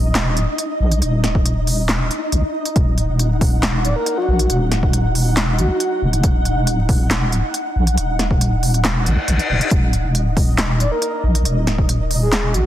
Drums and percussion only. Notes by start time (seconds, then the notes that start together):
0.15 snare, clap, closed hi-hat
0.37 closed hi-hat
0.58 closed hi-hat
0.92 closed hi-hat
1.02 closed hi-hat
1.24 snare, closed hi-hat
1.35 kick
1.45 closed hi-hat
1.67 open hi-hat
1.89 snare, clap, closed hi-hat
2.11 closed hi-hat
2.32 closed hi-hat
2.66 closed hi-hat
2.76 kick, closed hi-hat
2.98 closed hi-hat
3.19 closed hi-hat
3.41 kick, open hi-hat
3.63 snare, clap, closed hi-hat
3.85 closed hi-hat
4.06 closed hi-hat
4.39 closed hi-hat
4.50 closed hi-hat
4.72 snare, closed hi-hat
4.83 kick
4.93 closed hi-hat
5.15 open hi-hat
5.37 snare, clap, closed hi-hat
5.59 closed hi-hat
5.80 closed hi-hat
6.13 closed hi-hat
6.24 kick, closed hi-hat
6.45 closed hi-hat
6.67 closed hi-hat
6.89 kick, open hi-hat
7.11 snare, clap, closed hi-hat
7.32 closed hi-hat
7.54 closed hi-hat
7.87 closed hi-hat
7.98 closed hi-hat
8.19 snare, closed hi-hat
8.31 kick
8.41 closed hi-hat
8.63 open hi-hat
8.74 closed hi-hat
8.85 snare, clap, closed hi-hat
9.06 closed hi-hat
9.28 closed hi-hat
9.39 closed hi-hat
9.61 closed hi-hat
9.71 kick, closed hi-hat
9.93 closed hi-hat
10.15 closed hi-hat
10.37 kick, open hi-hat
10.58 snare, clap, closed hi-hat
10.80 closed hi-hat
11.02 closed hi-hat
11.35 closed hi-hat
11.45 closed hi-hat
11.67 snare, closed hi-hat
11.78 kick
11.89 closed hi-hat
12.11 open hi-hat
12.32 snare, clap, closed hi-hat
12.54 closed hi-hat